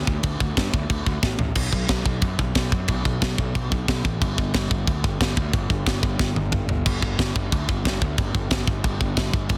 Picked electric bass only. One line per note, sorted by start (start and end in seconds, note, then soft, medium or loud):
0.07 0.18 D2 loud
0.23 0.34 D2 loud
0.40 0.52 D2 medium
0.57 0.68 G2 medium
0.73 0.84 D2 medium
0.89 1.01 D2 medium
1.06 1.17 D2 medium
1.23 1.34 A1 medium
1.39 1.50 A1 medium
1.55 1.70 B1 loud
1.72 1.87 B1 medium
1.89 2.03 B1 medium
2.05 2.20 B1 medium
2.22 2.36 F#2 medium
2.39 2.53 B1 medium
2.55 2.70 B1 medium
2.72 2.86 F#2 medium
2.89 3.03 B1 medium
3.05 3.19 B1 medium
3.22 3.36 B1 medium
3.38 3.53 B1 medium
3.55 3.69 B1 medium
3.71 3.86 B1 medium
3.88 4.02 B1 medium
4.04 4.23 A1 medium
4.21 4.36 G1 loud
4.38 4.52 G1 medium
4.54 4.68 G1 medium
4.70 4.85 G1 medium
4.87 5.02 D2 loud
5.04 5.18 G1 medium
5.20 5.35 G1 medium
5.37 5.51 D2 medium
5.53 5.68 G1 medium
5.70 5.84 G1 medium
5.86 6.01 G1 medium
6.02 6.17 G1 medium
6.19 6.34 G1 medium
6.35 6.50 G1 medium
6.52 6.66 G1 medium
6.68 6.83 G1 medium
6.86 7.00 G1 medium
7.02 7.16 G1 medium
7.19 7.33 G1 medium
7.35 7.49 G1 medium
7.52 7.66 D2 medium
7.69 7.83 G1 medium
7.85 7.99 G1 medium
8.01 8.16 D2 medium
8.18 8.32 G1 medium
8.34 8.48 G1 medium
8.50 8.65 G1 medium
8.67 8.81 G1 medium
8.84 8.98 G1 loud
9.01 9.15 G1 medium
9.16 9.31 G1 medium
9.33 9.48 G1 medium
9.49 9.58 G1 loud